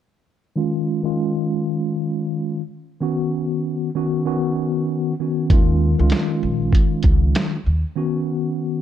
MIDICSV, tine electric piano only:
0, 0, Header, 1, 2, 480
1, 0, Start_track
1, 0, Key_signature, -6, "minor"
1, 0, Tempo, 618557
1, 428, Time_signature, 4, 2, 24, 8
1, 6844, End_track
2, 0, Start_track
2, 0, Title_t, "Tine electric piano"
2, 0, Program_c, 0, 4
2, 432, Note_on_c, 0, 51, 92
2, 437, Note_on_c, 0, 56, 77
2, 442, Note_on_c, 0, 61, 79
2, 447, Note_on_c, 0, 65, 95
2, 777, Note_off_c, 0, 51, 0
2, 780, Note_off_c, 0, 56, 0
2, 782, Note_off_c, 0, 61, 0
2, 785, Note_off_c, 0, 65, 0
2, 801, Note_on_c, 0, 51, 91
2, 807, Note_on_c, 0, 56, 81
2, 811, Note_on_c, 0, 61, 83
2, 817, Note_on_c, 0, 65, 99
2, 2017, Note_off_c, 0, 51, 0
2, 2020, Note_off_c, 0, 56, 0
2, 2022, Note_off_c, 0, 61, 0
2, 2025, Note_off_c, 0, 65, 0
2, 2333, Note_on_c, 0, 51, 81
2, 2339, Note_on_c, 0, 59, 83
2, 2344, Note_on_c, 0, 61, 83
2, 2349, Note_on_c, 0, 66, 99
2, 3013, Note_off_c, 0, 51, 0
2, 3016, Note_off_c, 0, 59, 0
2, 3019, Note_off_c, 0, 61, 0
2, 3021, Note_off_c, 0, 66, 0
2, 3063, Note_on_c, 0, 51, 89
2, 3068, Note_on_c, 0, 59, 74
2, 3073, Note_on_c, 0, 61, 82
2, 3079, Note_on_c, 0, 66, 106
2, 3290, Note_off_c, 0, 51, 0
2, 3292, Note_off_c, 0, 59, 0
2, 3295, Note_off_c, 0, 61, 0
2, 3298, Note_off_c, 0, 66, 0
2, 3298, Note_on_c, 0, 51, 93
2, 3302, Note_on_c, 0, 59, 80
2, 3308, Note_on_c, 0, 61, 81
2, 3313, Note_on_c, 0, 66, 103
2, 3976, Note_off_c, 0, 51, 0
2, 3978, Note_off_c, 0, 59, 0
2, 3980, Note_off_c, 0, 61, 0
2, 3983, Note_off_c, 0, 66, 0
2, 4032, Note_on_c, 0, 51, 81
2, 4037, Note_on_c, 0, 59, 69
2, 4043, Note_on_c, 0, 61, 70
2, 4048, Note_on_c, 0, 66, 81
2, 4254, Note_off_c, 0, 51, 0
2, 4257, Note_off_c, 0, 59, 0
2, 4260, Note_off_c, 0, 61, 0
2, 4262, Note_off_c, 0, 66, 0
2, 4272, Note_on_c, 0, 51, 98
2, 4277, Note_on_c, 0, 56, 78
2, 4282, Note_on_c, 0, 61, 78
2, 4288, Note_on_c, 0, 65, 95
2, 4617, Note_off_c, 0, 51, 0
2, 4620, Note_off_c, 0, 56, 0
2, 4622, Note_off_c, 0, 61, 0
2, 4625, Note_off_c, 0, 65, 0
2, 4643, Note_on_c, 0, 51, 91
2, 4649, Note_on_c, 0, 56, 81
2, 4653, Note_on_c, 0, 61, 82
2, 4658, Note_on_c, 0, 65, 97
2, 5858, Note_off_c, 0, 51, 0
2, 5861, Note_off_c, 0, 56, 0
2, 5863, Note_off_c, 0, 61, 0
2, 5866, Note_off_c, 0, 65, 0
2, 6174, Note_on_c, 0, 51, 84
2, 6179, Note_on_c, 0, 59, 82
2, 6184, Note_on_c, 0, 61, 84
2, 6189, Note_on_c, 0, 66, 99
2, 6844, Note_off_c, 0, 51, 0
2, 6844, Note_off_c, 0, 59, 0
2, 6844, Note_off_c, 0, 61, 0
2, 6844, Note_off_c, 0, 66, 0
2, 6844, End_track
0, 0, End_of_file